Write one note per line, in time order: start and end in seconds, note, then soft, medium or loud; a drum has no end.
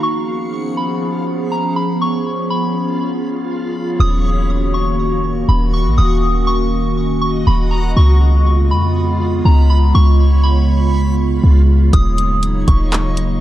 0.03 3.96 F3 medium
0.03 3.96 B3 medium
0.03 3.96 C#4 medium
0.03 3.96 F4 medium
0.03 3.96 G#4 medium
0.03 3.96 C#5 medium
0.03 3.96 B5 medium
0.03 0.73 C#6 loud
0.77 1.48 B5 medium
1.52 1.75 A#5 medium
1.76 2.00 B5 medium
2.02 2.48 C#6 loud
2.50 3.46 B5 medium
4.00 5.45 D#1 loud
4.00 7.93 D#3 medium
4.00 7.93 A#3 medium
4.00 7.93 C#4 medium
4.00 7.93 F#4 medium
4.00 7.93 D#5 medium
4.00 5.96 C#6 medium
4.00 4.70 D#6 loud
4.74 5.44 C#6 medium
5.49 5.87 D#1 loud
5.49 5.72 B5 medium
5.74 5.97 C#6 medium
5.86 5.98 A#1 loud
5.98 7.43 D#1 loud
5.98 6.45 D#6 loud
5.98 7.94 D#6 medium
6.47 7.18 C#6 medium
7.21 7.45 C#6 medium
7.47 7.95 D#1 loud
7.47 7.70 B5 medium
7.71 7.95 A#5 medium
7.96 8.72 C#2 loud
7.96 13.40 C#3 medium
7.96 11.89 G#3 medium
7.96 11.89 B3 medium
7.96 11.89 F4 medium
7.96 11.89 F4 loud
7.96 11.89 C#5 medium
7.96 11.89 B5 medium
7.96 8.67 C#6 loud
8.71 9.41 F2 medium
8.71 9.41 B5 medium
9.45 9.93 C#2 loud
9.45 9.69 A#5 medium
9.70 9.94 B5 medium
9.95 11.40 C#2 loud
9.95 10.41 C#6 loud
10.43 11.39 B5 medium
11.44 11.91 C#2 loud
11.93 12.65 D#1 loud
11.93 13.40 F#3 medium
11.93 13.40 A#3 medium
11.93 13.40 D#4 medium
11.93 13.40 F#4 medium
11.93 13.40 D#5 medium
11.93 13.40 C#6 medium
11.93 12.64 D#6 loud
11.93 kick loud
11.93 closed hi-hat medium
12.18 closed hi-hat medium
12.43 closed hi-hat medium
12.68 13.40 D#1 loud
12.68 13.38 C#6 medium
12.68 kick loud
12.68 closed hi-hat medium
12.92 clap loud
12.92 closed hi-hat medium
13.17 closed hi-hat medium